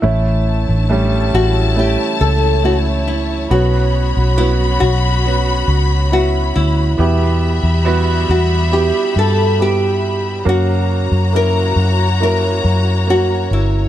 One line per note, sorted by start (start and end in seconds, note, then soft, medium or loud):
0.00 0.65 A1 loud
0.00 1.30 A2 medium
0.00 1.29 E3 medium
0.00 0.85 A3 medium
0.00 0.85 C#4 medium
0.00 0.77 E4 medium
0.00 3.47 E4 medium
0.00 0.86 E4 medium
0.00 6.94 C#5 medium
0.00 3.47 A5 medium
0.69 1.30 A1 medium
0.77 1.39 D4 medium
0.90 1.73 G3 medium
0.90 1.72 A3 medium
0.90 1.73 C#4 medium
1.34 1.95 A1 medium
1.34 1.78 F#4 medium
1.76 2.59 A3 medium
1.76 2.59 C#4 medium
1.76 2.60 E4 medium
1.76 2.18 G4 medium
2.21 3.47 C#2 medium
2.21 2.65 A4 medium
2.64 3.46 A3 medium
2.64 3.47 C#4 medium
2.64 3.47 E4 medium
2.64 2.77 F#4 medium
3.08 3.51 E4 medium
3.50 4.12 B1 medium
3.50 4.77 B2 medium
3.50 4.78 F#3 medium
3.50 4.33 B3 medium
3.50 4.34 C#4 medium
3.50 6.95 F#4 medium
3.50 4.34 F#4 medium
3.50 6.95 B5 medium
4.17 4.78 B1 medium
4.37 5.20 B3 medium
4.37 5.21 C#4 medium
4.37 4.49 E4 medium
4.37 5.21 F#4 medium
4.80 5.64 B1 loud
4.80 6.12 F#4 medium
5.25 6.07 B3 medium
5.25 6.08 C#4 medium
5.25 6.08 F#4 medium
5.68 6.51 C#2 medium
6.11 6.94 B3 medium
6.11 6.94 C#4 medium
6.11 6.94 E4 medium
6.11 6.57 F#4 medium
6.56 6.96 D2 medium
6.56 8.35 E4 medium
6.98 7.60 E2 medium
6.98 8.25 B2 medium
6.98 10.43 G3 medium
6.98 7.81 B3 medium
6.98 7.81 E4 medium
6.98 7.82 G4 medium
6.98 10.44 E5 medium
6.98 10.43 B5 medium
7.63 8.25 E2 medium
7.85 8.68 B3 medium
7.85 8.68 E4 medium
7.85 8.69 F#4 loud
8.29 8.91 E2 loud
8.29 8.73 F#4 medium
8.71 9.55 B3 medium
8.71 9.55 E4 medium
8.71 9.55 G4 medium
8.71 9.13 G4 medium
9.16 10.42 G2 medium
9.16 9.62 A4 medium
9.59 10.42 B3 medium
9.59 10.42 E4 medium
9.59 10.42 G4 medium
9.59 10.48 G4 medium
10.45 11.07 F#2 medium
10.45 11.73 C#3 medium
10.45 11.28 A#3 medium
10.45 11.29 C#4 medium
10.45 11.29 F#4 medium
10.45 13.89 F#4 medium
10.45 11.31 F#4 medium
10.45 13.89 C#5 medium
10.45 13.89 A#5 medium
11.12 11.73 F#2 medium
11.33 12.16 A#3 medium
11.33 12.16 C#4 medium
11.33 12.17 E4 medium
11.33 12.22 A#4 loud
11.76 12.60 F#2 medium
12.20 13.03 A#3 medium
12.20 13.03 C#4 medium
12.20 13.04 E4 medium
12.20 13.05 A#4 medium
12.65 13.47 F#2 medium
13.07 13.89 A#3 medium
13.07 13.89 C#4 medium
13.07 13.89 F#4 medium
13.07 13.49 F#4 medium
13.51 13.89 G1 medium
13.51 13.89 E4 medium